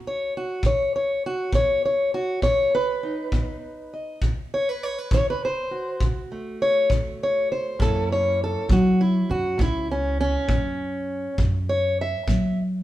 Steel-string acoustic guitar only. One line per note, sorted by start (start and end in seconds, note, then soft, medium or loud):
0.00 0.28 A#3 medium
0.00 0.61 A#4 soft
0.07 0.35 C#5 medium
0.37 0.65 F#4 medium
0.63 1.17 B2 medium
0.63 0.94 C#5 medium
0.96 1.24 C#5 medium
1.26 1.55 F#4 loud
1.53 2.07 B3 medium
1.53 1.84 C#5 loud
1.85 2.14 C#5 medium
2.14 2.43 F#4 medium
2.42 2.96 B2 medium
2.42 2.73 C#5 loud
2.75 3.93 B4 loud
3.03 4.18 D#4 soft
3.32 3.86 B3 medium
3.94 4.19 D#5 soft
4.23 4.76 C3 medium
4.54 4.69 C#5 medium
4.69 4.83 B4 loud
4.83 4.98 C#5 loud
4.98 5.12 B4 medium
5.13 5.66 D#3 medium
5.13 5.28 C#5 loud
5.30 5.43 B4 medium
5.45 6.03 C5 medium
5.71 7.81 F#4 soft
6.01 6.55 C3 medium
6.32 7.80 A3 soft
6.62 6.91 C#5 loud
6.89 7.43 D#3 medium
7.23 7.51 C#5 medium
7.52 7.81 C5 medium
7.79 8.33 F#2 medium
7.79 8.68 A#3 soft
7.79 9.91 C#4 medium
7.79 9.00 E4 medium
7.79 8.11 A4 medium
8.12 8.41 C#5 loud
8.44 8.71 A4 medium
8.69 9.23 A#3 medium
8.69 9.01 F#4 medium
9.01 9.30 E4 medium
9.31 9.59 F#4 loud
9.58 10.12 F#2 medium
9.58 9.90 E4 loud
9.91 10.19 C#4 medium
10.20 11.39 C#4 loud
10.48 11.02 A#3 medium
11.39 11.92 F#2 medium
11.69 11.98 C#5 medium
12.01 12.59 E5 medium
12.27 12.81 A#3 medium